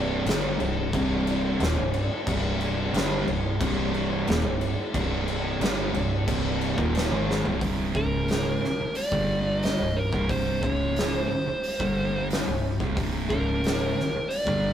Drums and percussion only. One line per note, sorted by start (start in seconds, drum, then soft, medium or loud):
0.26 snare loud
0.26 crash medium
0.60 crash medium
0.93 kick loud
0.93 crash medium
1.27 crash medium
1.60 snare loud
1.60 crash medium
1.94 crash medium
2.27 kick loud
2.27 crash medium
2.61 crash medium
2.94 snare loud
2.94 crash medium
3.28 crash medium
3.61 kick loud
3.61 crash medium
3.94 crash medium
4.27 snare loud
4.27 crash medium
4.61 crash medium
4.94 kick loud
4.94 crash medium
5.28 crash medium
5.61 snare loud
5.61 crash medium
5.94 crash medium
6.28 kick loud
6.28 crash loud
6.61 crash medium
6.78 kick loud
6.95 snare loud
6.95 crash medium
7.31 snare medium
7.45 floor tom loud
7.61 kick loud
7.61 open hi-hat medium
7.95 kick loud
8.28 snare loud
8.28 open hi-hat medium
8.64 snare soft
8.95 open hi-hat medium
9.12 kick loud
9.63 snare loud
9.63 open hi-hat medium
10.13 kick loud
10.29 kick loud
10.29 open hi-hat medium
10.63 kick loud
10.96 snare loud
10.96 open hi-hat medium
11.63 open hi-hat medium
11.80 kick loud
12.30 snare loud
12.30 open hi-hat medium
12.80 kick loud
12.97 kick loud
12.97 open hi-hat medium
13.30 kick loud
13.64 snare loud
13.64 open hi-hat medium
14.00 snare soft
14.30 open hi-hat medium
14.47 kick loud